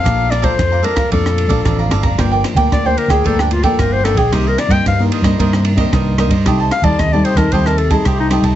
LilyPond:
<<
  \new Staff \with { instrumentName = "Cavaquinho" } { \time 4/4 \key bes \major \tempo 4 = 112 <a' d'' f'' bes''>8 <a' d'' f'' bes''>16 <a' d'' f'' bes''>16 r16 <d'' f'' bes''>16 <a' d'' f'' bes''>16 <d'' f'' bes''>16 <d'' f''>8. <a' d'' f'' bes''>16 <a' d'' f'' bes''>16 <d'' f'' bes''>16 <a' d'' f'' bes''>16 <d'' f'' bes''>16 | \key g \minor <f' bes' d'' g''>16 <bes' d'' g''>16 r16 <bes' d'' g''>8 <bes' d'' g''>16 <f' bes' d'' g''>16 <bes' d'' g''>16 <f' bes' d'' g''>16 <bes' d'' g''>16 r16 <bes' d'' g''>16 <f' bes' d'' g''>8 <f' bes' d'' g''>16 <bes' d'' g''>16 | <ees' bes' c'' ees''>16 <bes' c'' ees''>16 r16 <bes' c'' ees''>8 <bes' c'' ees''>16 <ees' bes' c'' ees''>16 <bes' c'' ees''>16 <ees' bes' c'' ees''>16 <bes' c'' ees''>16 r16 <bes' c'' ees''>16 <ees' bes' c'' ees''>8 <ees' bes' c'' ees''>16 <bes' c'' ees''>16 | <g' c'' ees'' a''>16 <c'' ees'' a''>16 r16 <c'' ees'' a''>8 <c'' ees'' a''>16 <g' c'' ees'' a''>16 <c'' ees'' a''>16 <g' c'' ees'' a''>16 <c'' ees'' a''>16 r16 <c'' ees'' a''>16 <g' c'' ees'' a''>8 <g' c'' ees'' a''>16 <c'' ees'' a''>16 | }
  \new Staff \with { instrumentName = "Clarinet" } { \time 4/4 \key bes \major f''8 d''16 c''8. bes'8 a'4. r8 | \key g \minor r4 d''16 c''16 bes'16 aes'16 a'16 d'16 f'16 a'16 bes'16 c''16 a'16 aes'16 | g'16 bes'16 d''16 g''16 f''8 r2 r8 | r8 f''16 d''16 ees''16 d''16 c''16 bes'16 c''16 bes'16 a'16 aes'16 g'16 ees'16 r8 | }
  \new Staff \with { instrumentName = "Nylon-string guitar" } { \time 4/4 \key bes \major << { <f a d'>8 r16 <f a d'>8. <f a d'>16 r16 <f a d'>8. <f a d'>8. <f a d'>16 r16 | \key g \minor <f bes d'>8. <f bes d'>8 <f bes d'>8. <f bes d'>8. <f bes d'>8. <f bes d'>16 r16 | <ees bes d'>8. <ees bes d'>8 <ees bes d'>8 <ees bes d'>16 <ees bes d'>8. <ees bes d'>8. <ees bes d'>16 r16 | <g a ees'>8 r16 <g a ees'>8 <g a ees'>8 <g a ees'>16 <g a ees'>8 r16 <g a ees'>8. <g a ees'>8 | } \\ { bes,4 f,4 bes,4 f,4 | g,4 d4 g,4 d4 | c4 g,4 c4 g,4 | c4 c4 c4 c4 | } >> }
  \new Staff \with { instrumentName = "Fingered electric bass" } { \clef bass \time 4/4 \key bes \major bes,,4 f,8 r8 f,8. bes,,16 a,,8 g,,8 | \key g \minor g,,8 r16 d,16 d,8 r16 d,16 d,4 g,,8. bes,,16 | c,8 r16 g,16 g,8 r16 g,16 g,4 c,8. g,16 | c,8 r16 ees,16 ees,8 r16 ees,16 ees,4 c,8. c,16 | }
  \new DrumStaff \with { instrumentName = "Drums" } \drummode { \time 4/4 <bd cymr ss>8 <cymr ss>16 <bd cymr>16 <bd cymr ss>8 cymr16 <bd cymr ss>16 <bd cymr>16 ss16 cymr16 <bd cymr>16 <bd cymr ss>8 <cymr ss>16 <bd cymr>16 | <bd cymr ss>8 <cymr ss>16 <bd cymr>16 <bd cymr ss>8 cymr16 <bd cymr ss>16 <bd cymr>16 ss16 cymr16 <bd cymr>16 <bd cymr ss>8 <cymr ss>16 <bd cymr>16 | <bd cymr ss>8 <cymr ss>16 <bd cymr>16 <bd cymr ss>8 cymr16 <bd cymr ss>16 <bd cymr>16 ss16 cymr16 <bd cymr>16 <bd cymr ss>8 <cymr ss>16 <bd cymr>16 | <bd cymr ss>8 <cymr ss>16 <bd cymr>16 <bd cymr ss>8 cymr16 <bd cymr ss>16 <bd cymr>16 ss16 cymr16 <bd cymr>16 <bd cymr ss>8 <cymr ss>16 <bd cymr>16 | }
>>